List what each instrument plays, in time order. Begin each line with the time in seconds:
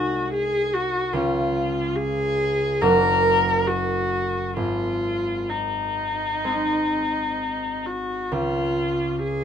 Already playing: harp C2 G#3 D#4 G#4, viola F#4
0.33 viola G#4
0.73 viola F#4
1.13 harp C#2 G#3 C#4 F4, viola F4
1.96 viola G#4
2.81 harp F#1 A#3 C#4 F#4, viola A#4
3.67 viola F#4
4.57 harp G#1, viola F4
5.49 viola D#4
6.44 harp G#3 C4 D#4
7.86 viola F#4
8.32 harp C#2, viola F4
9.23 viola G#4